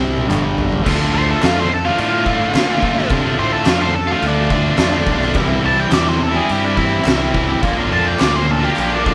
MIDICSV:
0, 0, Header, 1, 6, 480
1, 0, Start_track
1, 0, Key_signature, -1, "minor"
1, 0, Tempo, 561798
1, 729, Time_signature, 4, 2, 24, 8
1, 4090, Tempo, 569260
1, 7762, End_track
2, 0, Start_track
2, 0, Title_t, "Lead electric guitar"
2, 0, Program_c, 0, 29
2, 980, Note_on_c, 0, 72, 111
2, 1091, Note_off_c, 0, 72, 0
2, 1118, Note_on_c, 0, 69, 91
2, 1220, Note_off_c, 0, 69, 0
2, 1246, Note_on_c, 0, 65, 83
2, 1344, Note_off_c, 0, 65, 0
2, 1366, Note_on_c, 0, 72, 90
2, 1482, Note_off_c, 0, 72, 0
2, 1482, Note_on_c, 0, 69, 93
2, 1581, Note_on_c, 0, 65, 91
2, 1582, Note_off_c, 0, 69, 0
2, 1691, Note_off_c, 0, 65, 0
2, 1714, Note_on_c, 0, 65, 94
2, 2632, Note_off_c, 0, 65, 0
2, 2898, Note_on_c, 0, 72, 115
2, 3010, Note_off_c, 0, 72, 0
2, 3010, Note_on_c, 0, 69, 88
2, 3126, Note_off_c, 0, 69, 0
2, 3152, Note_on_c, 0, 65, 96
2, 3257, Note_off_c, 0, 65, 0
2, 3257, Note_on_c, 0, 72, 92
2, 3369, Note_off_c, 0, 72, 0
2, 3377, Note_on_c, 0, 69, 97
2, 3490, Note_off_c, 0, 69, 0
2, 3522, Note_on_c, 0, 65, 97
2, 3623, Note_off_c, 0, 65, 0
2, 3654, Note_on_c, 0, 62, 107
2, 4562, Note_off_c, 0, 62, 0
2, 4826, Note_on_c, 0, 81, 120
2, 4933, Note_off_c, 0, 81, 0
2, 4941, Note_on_c, 0, 79, 91
2, 5050, Note_off_c, 0, 79, 0
2, 5059, Note_on_c, 0, 74, 98
2, 5183, Note_off_c, 0, 74, 0
2, 5183, Note_on_c, 0, 72, 95
2, 5290, Note_off_c, 0, 72, 0
2, 5308, Note_on_c, 0, 69, 104
2, 5417, Note_off_c, 0, 69, 0
2, 5417, Note_on_c, 0, 68, 113
2, 5544, Note_off_c, 0, 68, 0
2, 5544, Note_on_c, 0, 67, 93
2, 5651, Note_off_c, 0, 67, 0
2, 5657, Note_on_c, 0, 62, 97
2, 5764, Note_off_c, 0, 62, 0
2, 5764, Note_on_c, 0, 64, 86
2, 5997, Note_off_c, 0, 64, 0
2, 6737, Note_on_c, 0, 81, 104
2, 6860, Note_off_c, 0, 81, 0
2, 6860, Note_on_c, 0, 79, 98
2, 6966, Note_on_c, 0, 74, 101
2, 6970, Note_off_c, 0, 79, 0
2, 7083, Note_off_c, 0, 74, 0
2, 7102, Note_on_c, 0, 72, 91
2, 7230, Note_off_c, 0, 72, 0
2, 7230, Note_on_c, 0, 69, 102
2, 7337, Note_off_c, 0, 69, 0
2, 7343, Note_on_c, 0, 67, 111
2, 7453, Note_off_c, 0, 67, 0
2, 7475, Note_on_c, 0, 67, 103
2, 7580, Note_off_c, 0, 67, 0
2, 7585, Note_on_c, 0, 62, 84
2, 7695, Note_off_c, 0, 62, 0
2, 7704, Note_on_c, 0, 62, 104
2, 7762, Note_off_c, 0, 62, 0
2, 7762, End_track
3, 0, Start_track
3, 0, Title_t, "Overdriven electric guitar"
3, 0, Program_c, 1, 29
3, 0, Note_on_c, 1, 48, 91
3, 0, Note_on_c, 1, 55, 98
3, 0, Note_on_c, 1, 60, 108
3, 233, Note_on_c, 1, 43, 86
3, 235, Note_off_c, 1, 48, 0
3, 235, Note_off_c, 1, 55, 0
3, 240, Note_off_c, 1, 60, 0
3, 245, Note_on_c, 1, 50, 102
3, 248, Note_on_c, 1, 55, 107
3, 701, Note_off_c, 1, 50, 0
3, 708, Note_off_c, 1, 55, 0
3, 711, Note_on_c, 1, 50, 87
3, 713, Note_off_c, 1, 43, 0
3, 721, Note_on_c, 1, 57, 85
3, 730, Note_on_c, 1, 62, 95
3, 747, Note_on_c, 1, 65, 106
3, 841, Note_off_c, 1, 65, 0
3, 845, Note_on_c, 1, 65, 74
3, 853, Note_off_c, 1, 62, 0
3, 856, Note_on_c, 1, 62, 64
3, 867, Note_off_c, 1, 57, 0
3, 871, Note_on_c, 1, 57, 62
3, 950, Note_off_c, 1, 50, 0
3, 953, Note_on_c, 1, 50, 67
3, 957, Note_off_c, 1, 57, 0
3, 960, Note_on_c, 1, 57, 72
3, 967, Note_off_c, 1, 62, 0
3, 970, Note_on_c, 1, 62, 76
3, 975, Note_off_c, 1, 65, 0
3, 978, Note_on_c, 1, 65, 74
3, 1198, Note_off_c, 1, 50, 0
3, 1201, Note_on_c, 1, 50, 97
3, 1207, Note_off_c, 1, 57, 0
3, 1211, Note_on_c, 1, 57, 90
3, 1215, Note_off_c, 1, 62, 0
3, 1218, Note_on_c, 1, 62, 99
3, 1224, Note_off_c, 1, 65, 0
3, 1227, Note_on_c, 1, 65, 112
3, 1331, Note_off_c, 1, 65, 0
3, 1334, Note_on_c, 1, 65, 67
3, 1339, Note_off_c, 1, 62, 0
3, 1343, Note_on_c, 1, 62, 64
3, 1352, Note_off_c, 1, 57, 0
3, 1355, Note_on_c, 1, 57, 58
3, 1448, Note_off_c, 1, 57, 0
3, 1449, Note_off_c, 1, 50, 0
3, 1454, Note_off_c, 1, 62, 0
3, 1460, Note_off_c, 1, 65, 0
3, 1581, Note_on_c, 1, 65, 70
3, 1598, Note_on_c, 1, 62, 65
3, 1613, Note_on_c, 1, 57, 58
3, 1924, Note_on_c, 1, 50, 76
3, 1926, Note_off_c, 1, 57, 0
3, 1928, Note_off_c, 1, 62, 0
3, 1936, Note_on_c, 1, 57, 81
3, 1938, Note_on_c, 1, 62, 85
3, 1940, Note_off_c, 1, 65, 0
3, 1951, Note_on_c, 1, 65, 93
3, 2149, Note_off_c, 1, 50, 0
3, 2159, Note_on_c, 1, 50, 90
3, 2161, Note_off_c, 1, 57, 0
3, 2169, Note_off_c, 1, 62, 0
3, 2171, Note_on_c, 1, 57, 96
3, 2175, Note_off_c, 1, 65, 0
3, 2179, Note_on_c, 1, 62, 109
3, 2185, Note_on_c, 1, 65, 101
3, 2272, Note_off_c, 1, 65, 0
3, 2282, Note_on_c, 1, 65, 74
3, 2286, Note_off_c, 1, 62, 0
3, 2297, Note_on_c, 1, 62, 75
3, 2301, Note_off_c, 1, 57, 0
3, 2312, Note_on_c, 1, 57, 61
3, 2403, Note_off_c, 1, 50, 0
3, 2409, Note_off_c, 1, 57, 0
3, 2413, Note_on_c, 1, 50, 75
3, 2419, Note_on_c, 1, 57, 82
3, 2422, Note_off_c, 1, 65, 0
3, 2425, Note_off_c, 1, 62, 0
3, 2432, Note_on_c, 1, 65, 82
3, 2435, Note_on_c, 1, 62, 81
3, 2519, Note_off_c, 1, 65, 0
3, 2530, Note_on_c, 1, 65, 73
3, 2534, Note_off_c, 1, 62, 0
3, 2545, Note_on_c, 1, 62, 71
3, 2547, Note_off_c, 1, 57, 0
3, 2558, Note_on_c, 1, 57, 63
3, 2643, Note_off_c, 1, 50, 0
3, 2647, Note_off_c, 1, 57, 0
3, 2653, Note_on_c, 1, 50, 89
3, 2658, Note_on_c, 1, 57, 91
3, 2663, Note_off_c, 1, 62, 0
3, 2665, Note_off_c, 1, 65, 0
3, 2673, Note_on_c, 1, 62, 93
3, 2676, Note_on_c, 1, 65, 106
3, 2753, Note_off_c, 1, 65, 0
3, 2763, Note_on_c, 1, 65, 75
3, 2772, Note_off_c, 1, 62, 0
3, 2778, Note_off_c, 1, 57, 0
3, 2782, Note_on_c, 1, 62, 75
3, 2788, Note_on_c, 1, 57, 65
3, 2868, Note_off_c, 1, 50, 0
3, 2878, Note_off_c, 1, 57, 0
3, 2878, Note_on_c, 1, 50, 74
3, 2888, Note_on_c, 1, 57, 78
3, 2890, Note_off_c, 1, 65, 0
3, 2895, Note_off_c, 1, 62, 0
3, 2900, Note_on_c, 1, 65, 81
3, 2905, Note_on_c, 1, 62, 80
3, 3101, Note_off_c, 1, 50, 0
3, 3111, Note_on_c, 1, 50, 92
3, 3114, Note_off_c, 1, 57, 0
3, 3120, Note_off_c, 1, 62, 0
3, 3124, Note_on_c, 1, 57, 101
3, 3130, Note_on_c, 1, 62, 112
3, 3138, Note_off_c, 1, 65, 0
3, 3148, Note_on_c, 1, 65, 104
3, 3229, Note_off_c, 1, 65, 0
3, 3239, Note_on_c, 1, 65, 78
3, 3245, Note_off_c, 1, 62, 0
3, 3253, Note_off_c, 1, 57, 0
3, 3255, Note_on_c, 1, 62, 67
3, 3264, Note_on_c, 1, 57, 61
3, 3362, Note_off_c, 1, 50, 0
3, 3362, Note_off_c, 1, 57, 0
3, 3363, Note_off_c, 1, 62, 0
3, 3367, Note_off_c, 1, 65, 0
3, 3480, Note_on_c, 1, 65, 77
3, 3508, Note_on_c, 1, 62, 70
3, 3515, Note_on_c, 1, 57, 66
3, 3842, Note_off_c, 1, 57, 0
3, 3846, Note_on_c, 1, 50, 84
3, 3852, Note_on_c, 1, 57, 78
3, 3853, Note_off_c, 1, 62, 0
3, 3860, Note_off_c, 1, 65, 0
3, 3864, Note_on_c, 1, 62, 86
3, 3871, Note_on_c, 1, 65, 86
3, 4072, Note_off_c, 1, 50, 0
3, 4083, Note_off_c, 1, 57, 0
3, 4083, Note_on_c, 1, 50, 99
3, 4091, Note_off_c, 1, 62, 0
3, 4094, Note_on_c, 1, 57, 94
3, 4101, Note_on_c, 1, 62, 97
3, 4104, Note_off_c, 1, 65, 0
3, 4114, Note_on_c, 1, 65, 116
3, 4218, Note_off_c, 1, 65, 0
3, 4228, Note_on_c, 1, 65, 81
3, 4235, Note_off_c, 1, 62, 0
3, 4245, Note_on_c, 1, 62, 73
3, 4248, Note_off_c, 1, 57, 0
3, 4258, Note_on_c, 1, 57, 69
3, 4335, Note_off_c, 1, 50, 0
3, 4345, Note_on_c, 1, 50, 83
3, 4351, Note_off_c, 1, 57, 0
3, 4358, Note_off_c, 1, 62, 0
3, 4361, Note_on_c, 1, 57, 78
3, 4363, Note_off_c, 1, 65, 0
3, 4368, Note_on_c, 1, 62, 85
3, 4373, Note_on_c, 1, 65, 79
3, 4450, Note_off_c, 1, 65, 0
3, 4460, Note_on_c, 1, 65, 81
3, 4462, Note_off_c, 1, 62, 0
3, 4472, Note_on_c, 1, 62, 76
3, 4473, Note_off_c, 1, 57, 0
3, 4483, Note_on_c, 1, 57, 71
3, 4559, Note_off_c, 1, 65, 0
3, 4562, Note_off_c, 1, 50, 0
3, 4565, Note_off_c, 1, 62, 0
3, 4571, Note_off_c, 1, 57, 0
3, 4577, Note_on_c, 1, 48, 95
3, 4581, Note_on_c, 1, 52, 101
3, 4585, Note_on_c, 1, 55, 92
3, 4593, Note_on_c, 1, 60, 98
3, 4607, Note_on_c, 1, 64, 109
3, 4669, Note_off_c, 1, 64, 0
3, 4679, Note_on_c, 1, 64, 73
3, 4683, Note_off_c, 1, 60, 0
3, 4693, Note_on_c, 1, 60, 67
3, 4698, Note_off_c, 1, 55, 0
3, 4708, Note_on_c, 1, 55, 62
3, 4789, Note_off_c, 1, 52, 0
3, 4797, Note_off_c, 1, 55, 0
3, 4799, Note_on_c, 1, 52, 76
3, 4805, Note_off_c, 1, 60, 0
3, 4807, Note_on_c, 1, 55, 74
3, 4815, Note_on_c, 1, 60, 82
3, 4818, Note_off_c, 1, 64, 0
3, 4828, Note_on_c, 1, 64, 84
3, 4931, Note_off_c, 1, 48, 0
3, 5031, Note_off_c, 1, 52, 0
3, 5036, Note_on_c, 1, 48, 106
3, 5041, Note_on_c, 1, 52, 107
3, 5044, Note_off_c, 1, 55, 0
3, 5044, Note_off_c, 1, 60, 0
3, 5053, Note_off_c, 1, 64, 0
3, 5054, Note_on_c, 1, 55, 101
3, 5054, Note_on_c, 1, 60, 96
3, 5063, Note_on_c, 1, 64, 111
3, 5142, Note_off_c, 1, 64, 0
3, 5152, Note_on_c, 1, 64, 77
3, 5160, Note_off_c, 1, 60, 0
3, 5170, Note_on_c, 1, 60, 65
3, 5173, Note_off_c, 1, 55, 0
3, 5183, Note_on_c, 1, 55, 62
3, 5268, Note_off_c, 1, 52, 0
3, 5269, Note_off_c, 1, 55, 0
3, 5272, Note_off_c, 1, 60, 0
3, 5279, Note_off_c, 1, 64, 0
3, 5377, Note_on_c, 1, 64, 83
3, 5393, Note_on_c, 1, 60, 68
3, 5400, Note_off_c, 1, 48, 0
3, 5402, Note_on_c, 1, 55, 67
3, 5740, Note_on_c, 1, 52, 78
3, 5752, Note_off_c, 1, 55, 0
3, 5757, Note_off_c, 1, 60, 0
3, 5759, Note_off_c, 1, 64, 0
3, 5762, Note_on_c, 1, 55, 85
3, 5767, Note_on_c, 1, 60, 90
3, 5769, Note_on_c, 1, 64, 86
3, 5973, Note_on_c, 1, 48, 100
3, 5974, Note_off_c, 1, 52, 0
3, 5979, Note_off_c, 1, 55, 0
3, 5984, Note_on_c, 1, 52, 105
3, 5989, Note_off_c, 1, 64, 0
3, 5989, Note_on_c, 1, 55, 99
3, 5991, Note_off_c, 1, 60, 0
3, 5999, Note_on_c, 1, 64, 118
3, 6001, Note_on_c, 1, 60, 103
3, 6092, Note_off_c, 1, 64, 0
3, 6102, Note_on_c, 1, 64, 81
3, 6108, Note_off_c, 1, 60, 0
3, 6118, Note_off_c, 1, 55, 0
3, 6118, Note_on_c, 1, 60, 81
3, 6128, Note_on_c, 1, 55, 61
3, 6214, Note_off_c, 1, 52, 0
3, 6220, Note_off_c, 1, 55, 0
3, 6225, Note_on_c, 1, 52, 83
3, 6229, Note_off_c, 1, 60, 0
3, 6230, Note_on_c, 1, 55, 81
3, 6238, Note_off_c, 1, 64, 0
3, 6239, Note_on_c, 1, 60, 84
3, 6248, Note_on_c, 1, 64, 84
3, 6342, Note_off_c, 1, 64, 0
3, 6349, Note_off_c, 1, 48, 0
3, 6352, Note_on_c, 1, 64, 79
3, 6361, Note_off_c, 1, 60, 0
3, 6371, Note_on_c, 1, 60, 68
3, 6373, Note_off_c, 1, 55, 0
3, 6383, Note_on_c, 1, 55, 61
3, 6461, Note_off_c, 1, 52, 0
3, 6464, Note_off_c, 1, 64, 0
3, 6471, Note_on_c, 1, 46, 88
3, 6474, Note_off_c, 1, 60, 0
3, 6480, Note_off_c, 1, 55, 0
3, 6491, Note_on_c, 1, 58, 96
3, 6492, Note_on_c, 1, 50, 101
3, 6498, Note_on_c, 1, 62, 94
3, 6505, Note_on_c, 1, 65, 105
3, 6585, Note_off_c, 1, 65, 0
3, 6589, Note_on_c, 1, 65, 75
3, 6596, Note_off_c, 1, 62, 0
3, 6599, Note_on_c, 1, 62, 67
3, 6603, Note_off_c, 1, 58, 0
3, 6613, Note_on_c, 1, 58, 58
3, 6701, Note_off_c, 1, 50, 0
3, 6706, Note_off_c, 1, 58, 0
3, 6712, Note_on_c, 1, 50, 71
3, 6716, Note_on_c, 1, 58, 70
3, 6724, Note_off_c, 1, 62, 0
3, 6727, Note_on_c, 1, 62, 77
3, 6732, Note_off_c, 1, 65, 0
3, 6735, Note_on_c, 1, 65, 85
3, 6839, Note_off_c, 1, 46, 0
3, 6954, Note_off_c, 1, 50, 0
3, 6957, Note_on_c, 1, 46, 107
3, 6962, Note_off_c, 1, 58, 0
3, 6964, Note_on_c, 1, 50, 100
3, 6972, Note_on_c, 1, 58, 97
3, 6976, Note_off_c, 1, 62, 0
3, 6979, Note_on_c, 1, 62, 96
3, 6986, Note_off_c, 1, 65, 0
3, 6989, Note_on_c, 1, 65, 100
3, 7062, Note_off_c, 1, 65, 0
3, 7065, Note_on_c, 1, 65, 75
3, 7075, Note_off_c, 1, 62, 0
3, 7078, Note_on_c, 1, 62, 63
3, 7079, Note_off_c, 1, 58, 0
3, 7089, Note_on_c, 1, 58, 62
3, 7186, Note_off_c, 1, 50, 0
3, 7186, Note_off_c, 1, 58, 0
3, 7191, Note_off_c, 1, 65, 0
3, 7197, Note_off_c, 1, 62, 0
3, 7302, Note_on_c, 1, 65, 75
3, 7316, Note_on_c, 1, 62, 73
3, 7324, Note_off_c, 1, 46, 0
3, 7330, Note_on_c, 1, 58, 67
3, 7669, Note_on_c, 1, 50, 75
3, 7672, Note_off_c, 1, 58, 0
3, 7683, Note_on_c, 1, 58, 86
3, 7684, Note_off_c, 1, 62, 0
3, 7688, Note_on_c, 1, 62, 86
3, 7703, Note_off_c, 1, 65, 0
3, 7706, Note_on_c, 1, 65, 82
3, 7762, Note_off_c, 1, 50, 0
3, 7762, Note_off_c, 1, 58, 0
3, 7762, Note_off_c, 1, 62, 0
3, 7762, Note_off_c, 1, 65, 0
3, 7762, End_track
4, 0, Start_track
4, 0, Title_t, "Fingered electric bass"
4, 0, Program_c, 2, 33
4, 0, Note_on_c, 2, 36, 91
4, 221, Note_off_c, 2, 36, 0
4, 263, Note_on_c, 2, 31, 92
4, 703, Note_off_c, 2, 31, 0
4, 744, Note_on_c, 2, 38, 86
4, 1138, Note_off_c, 2, 38, 0
4, 1229, Note_on_c, 2, 41, 95
4, 1621, Note_off_c, 2, 41, 0
4, 1699, Note_on_c, 2, 45, 98
4, 2095, Note_off_c, 2, 45, 0
4, 2177, Note_on_c, 2, 46, 95
4, 2574, Note_off_c, 2, 46, 0
4, 2658, Note_on_c, 2, 48, 88
4, 2854, Note_off_c, 2, 48, 0
4, 2902, Note_on_c, 2, 45, 98
4, 3097, Note_off_c, 2, 45, 0
4, 3128, Note_on_c, 2, 41, 91
4, 3531, Note_off_c, 2, 41, 0
4, 3609, Note_on_c, 2, 38, 95
4, 4012, Note_off_c, 2, 38, 0
4, 4089, Note_on_c, 2, 41, 90
4, 4289, Note_off_c, 2, 41, 0
4, 4333, Note_on_c, 2, 35, 95
4, 4531, Note_off_c, 2, 35, 0
4, 4572, Note_on_c, 2, 36, 95
4, 4970, Note_off_c, 2, 36, 0
4, 5046, Note_on_c, 2, 40, 99
4, 5446, Note_off_c, 2, 40, 0
4, 5536, Note_on_c, 2, 43, 93
4, 5932, Note_off_c, 2, 43, 0
4, 6008, Note_on_c, 2, 36, 94
4, 6409, Note_off_c, 2, 36, 0
4, 6491, Note_on_c, 2, 34, 92
4, 6690, Note_off_c, 2, 34, 0
4, 6725, Note_on_c, 2, 41, 97
4, 6927, Note_off_c, 2, 41, 0
4, 6976, Note_on_c, 2, 38, 94
4, 7376, Note_off_c, 2, 38, 0
4, 7461, Note_on_c, 2, 34, 94
4, 7762, Note_off_c, 2, 34, 0
4, 7762, End_track
5, 0, Start_track
5, 0, Title_t, "Muted overdriven electric guitar strokes"
5, 1451, Note_on_c, 9, 29, 52
5, 1537, Note_off_c, 9, 29, 0
5, 3372, Note_on_c, 9, 29, 46
5, 3457, Note_off_c, 9, 29, 0
5, 5278, Note_on_c, 9, 29, 43
5, 5362, Note_off_c, 9, 29, 0
5, 7195, Note_on_c, 9, 29, 51
5, 7279, Note_off_c, 9, 29, 0
5, 7762, End_track
6, 0, Start_track
6, 0, Title_t, "Drums"
6, 143, Note_on_c, 9, 48, 70
6, 229, Note_off_c, 9, 48, 0
6, 263, Note_on_c, 9, 39, 87
6, 266, Note_on_c, 9, 47, 85
6, 348, Note_off_c, 9, 39, 0
6, 351, Note_off_c, 9, 47, 0
6, 497, Note_on_c, 9, 43, 110
6, 582, Note_off_c, 9, 43, 0
6, 618, Note_on_c, 9, 43, 96
6, 703, Note_off_c, 9, 43, 0
6, 737, Note_on_c, 9, 36, 116
6, 737, Note_on_c, 9, 49, 120
6, 737, Note_on_c, 9, 57, 62
6, 822, Note_off_c, 9, 36, 0
6, 823, Note_off_c, 9, 49, 0
6, 823, Note_off_c, 9, 57, 0
6, 1217, Note_on_c, 9, 57, 64
6, 1219, Note_on_c, 9, 39, 93
6, 1224, Note_on_c, 9, 38, 111
6, 1302, Note_off_c, 9, 57, 0
6, 1304, Note_off_c, 9, 39, 0
6, 1310, Note_off_c, 9, 38, 0
6, 1695, Note_on_c, 9, 57, 70
6, 1780, Note_off_c, 9, 57, 0
6, 1933, Note_on_c, 9, 36, 90
6, 2018, Note_off_c, 9, 36, 0
6, 2175, Note_on_c, 9, 39, 91
6, 2177, Note_on_c, 9, 57, 68
6, 2185, Note_on_c, 9, 38, 106
6, 2260, Note_off_c, 9, 39, 0
6, 2262, Note_off_c, 9, 57, 0
6, 2270, Note_off_c, 9, 38, 0
6, 2414, Note_on_c, 9, 36, 89
6, 2500, Note_off_c, 9, 36, 0
6, 2547, Note_on_c, 9, 38, 35
6, 2632, Note_off_c, 9, 38, 0
6, 2643, Note_on_c, 9, 57, 66
6, 2652, Note_on_c, 9, 36, 118
6, 2729, Note_off_c, 9, 57, 0
6, 2738, Note_off_c, 9, 36, 0
6, 3121, Note_on_c, 9, 57, 61
6, 3123, Note_on_c, 9, 39, 92
6, 3129, Note_on_c, 9, 38, 121
6, 3207, Note_off_c, 9, 57, 0
6, 3209, Note_off_c, 9, 39, 0
6, 3214, Note_off_c, 9, 38, 0
6, 3608, Note_on_c, 9, 57, 62
6, 3693, Note_off_c, 9, 57, 0
6, 3848, Note_on_c, 9, 36, 97
6, 3934, Note_off_c, 9, 36, 0
6, 4076, Note_on_c, 9, 57, 63
6, 4083, Note_on_c, 9, 38, 108
6, 4095, Note_on_c, 9, 39, 96
6, 4160, Note_off_c, 9, 57, 0
6, 4168, Note_off_c, 9, 38, 0
6, 4179, Note_off_c, 9, 39, 0
6, 4326, Note_on_c, 9, 36, 95
6, 4411, Note_off_c, 9, 36, 0
6, 4450, Note_on_c, 9, 38, 37
6, 4534, Note_off_c, 9, 38, 0
6, 4555, Note_on_c, 9, 57, 69
6, 4564, Note_on_c, 9, 36, 114
6, 4639, Note_off_c, 9, 57, 0
6, 4648, Note_off_c, 9, 36, 0
6, 5039, Note_on_c, 9, 57, 65
6, 5044, Note_on_c, 9, 39, 100
6, 5047, Note_on_c, 9, 38, 105
6, 5123, Note_off_c, 9, 57, 0
6, 5128, Note_off_c, 9, 39, 0
6, 5131, Note_off_c, 9, 38, 0
6, 5527, Note_on_c, 9, 57, 66
6, 5612, Note_off_c, 9, 57, 0
6, 5765, Note_on_c, 9, 36, 92
6, 5849, Note_off_c, 9, 36, 0
6, 5994, Note_on_c, 9, 39, 98
6, 6014, Note_on_c, 9, 57, 67
6, 6022, Note_on_c, 9, 38, 114
6, 6078, Note_off_c, 9, 39, 0
6, 6099, Note_off_c, 9, 57, 0
6, 6106, Note_off_c, 9, 38, 0
6, 6247, Note_on_c, 9, 36, 97
6, 6331, Note_off_c, 9, 36, 0
6, 6486, Note_on_c, 9, 36, 118
6, 6488, Note_on_c, 9, 57, 69
6, 6571, Note_off_c, 9, 36, 0
6, 6573, Note_off_c, 9, 57, 0
6, 6964, Note_on_c, 9, 39, 98
6, 6967, Note_on_c, 9, 57, 61
6, 6974, Note_on_c, 9, 38, 109
6, 7048, Note_off_c, 9, 39, 0
6, 7051, Note_off_c, 9, 57, 0
6, 7059, Note_off_c, 9, 38, 0
6, 7441, Note_on_c, 9, 39, 70
6, 7458, Note_on_c, 9, 57, 66
6, 7526, Note_off_c, 9, 39, 0
6, 7542, Note_off_c, 9, 57, 0
6, 7695, Note_on_c, 9, 36, 96
6, 7762, Note_off_c, 9, 36, 0
6, 7762, End_track
0, 0, End_of_file